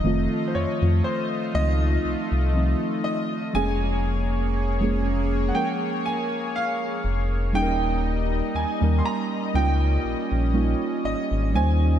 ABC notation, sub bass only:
X:1
M:4/4
L:1/16
Q:"Swing 16ths" 1/4=60
K:Ebmix
V:1 name="Sub bass" clef=bass
F,,, z F,, F,, z2 D,,2 C,, C,,2 z3 F,,,2- | F,,,6- F,,, z4 z F,,,2 E,,,2- | E,,,2 E,, E,, z2 D,,2 B,,, B,,,2 z A,,, A,,, E,,2 |]